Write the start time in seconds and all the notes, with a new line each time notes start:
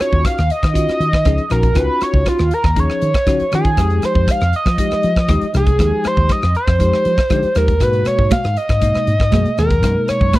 Already playing: C#4 D#4 F4 F#4
0.00 C#5, cross-stick, closed hi-hat
0.13 D#2, kick
0.25 F5, kick, cross-stick, closed hi-hat
0.38 D#2, cross-stick, closed hi-hat
0.50 D#5, closed hi-hat
0.63 D#3, kick, cross-stick, closed hi-hat
0.74 C#4 D#4 F4 F#4, kick, closed hi-hat
0.88 muted slap bass stroke, cross-stick, closed hi-hat
1.00 D#3, closed hi-hat
1.13 kick, cross-stick
1.25 C#2 F3 C#4 D#4 G#4, kick, cross-stick, closed hi-hat
1.38 muted slap bass stroke, closed hi-hat
1.50 A#1 F3 C#4 D#4 F#4 A#4, cross-stick, closed hi-hat
1.63 kick, closed hi-hat
1.75 C#2 C#4 D#4 F4 F#4 B4, kick, cross-stick, closed hi-hat
2.01 C#5, muted slap bass stroke, cross-stick, closed hi-hat
2.14 C#2, kick
2.26 F4, kick, cross-stick, closed hi-hat
2.38 D#2, cross-stick, closed hi-hat
2.51 A#4, closed hi-hat
2.64 D#2, kick, cross-stick
2.76 F3 C#4 D#4 G#4 C#5, kick, closed hi-hat
2.90 cross-stick
3.02 D#3, closed hi-hat
3.14 muted slap bass stroke, kick, cross-stick, closed hi-hat
3.27 C#3 F3 C#4 D#4 F#4, kick, cross-stick, closed hi-hat
3.40 muted slap bass stroke, closed hi-hat
3.52 D#3 F3 C#4 D#4 F4 G#4, cross-stick, closed hi-hat
3.65 kick, closed hi-hat
3.77 F2 F3 G#3 D#4 G4, kick, cross-stick, closed hi-hat
3.90 closed hi-hat
4.02 C5, muted slap bass stroke, cross-stick, closed hi-hat
4.15 F2, kick
4.28 F5, kick, cross-stick, closed hi-hat
4.41 F2, cross-stick, closed hi-hat
4.53 D#5, closed hi-hat
4.66 F3, kick, cross-stick, closed hi-hat
4.78 F3 G#3 D#4 G4, kick, closed hi-hat
4.91 muted slap bass stroke, cross-stick, closed hi-hat
5.03 F3, closed hi-hat
5.16 kick, cross-stick
5.28 D#2 F3 G#3 D#4 G4, kick, cross-stick, closed hi-hat
5.41 muted slap bass stroke, closed hi-hat
5.53 C2 F3 G#3 D#4 G#4, cross-stick, closed hi-hat
5.67 kick, closed hi-hat
5.78 D#2 F3 G#3 D#4 G4, kick, cross-stick, closed hi-hat
6.04 C5, muted slap bass stroke, cross-stick, closed hi-hat
6.17 D#2, kick
6.29 D#5, kick, cross-stick, closed hi-hat
6.42 F2, cross-stick, closed hi-hat
6.55 C5, closed hi-hat
6.67 F2, kick, cross-stick
6.79 F3 G#3 D#4 G4, kick, closed hi-hat
6.94 cross-stick
7.05 F3, closed hi-hat
7.18 muted slap bass stroke, kick, cross-stick, closed hi-hat
7.30 D3 F3 G#3 D#4 G4, kick, cross-stick, closed hi-hat
7.43 muted slap bass stroke, closed hi-hat
7.55 D#2 F3 G#3 D#4 G4 A#4, cross-stick, closed hi-hat
7.68 kick, closed hi-hat
7.80 G#2 B2 G#3 A#3 F#4 B4, kick, cross-stick, closed hi-hat, muted conga
7.93 closed hi-hat
8.05 C#5, muted slap bass stroke, cross-stick, closed hi-hat
8.18 G#2, kick
8.31 F5, kick, cross-stick, closed hi-hat, high conga
8.44 G#2, cross-stick, closed hi-hat
8.57 D#5, closed hi-hat
8.69 G#2, kick, cross-stick, closed hi-hat
8.81 B2 G#3 A#3 D#4, kick, closed hi-hat, muted conga
8.95 muted slap bass stroke, cross-stick, closed hi-hat
9.07 G#2, closed hi-hat, muted conga
9.20 kick, cross-stick
9.31 F#2 B2 G#3 A#3 G#4, kick, cross-stick, closed hi-hat, high conga
9.45 muted slap bass stroke, closed hi-hat
9.57 D#2 B2 G#3 A#3 G#4 A#4, cross-stick, closed hi-hat, muted conga
9.71 kick, closed hi-hat
9.82 F#2 B2 G#3 A#3 D#4, kick, cross-stick, closed hi-hat, muted conga
10.08 C#5, muted slap bass stroke, cross-stick, closed hi-hat
10.21 F#2, kick
10.33 B4, kick, cross-stick, closed hi-hat, high conga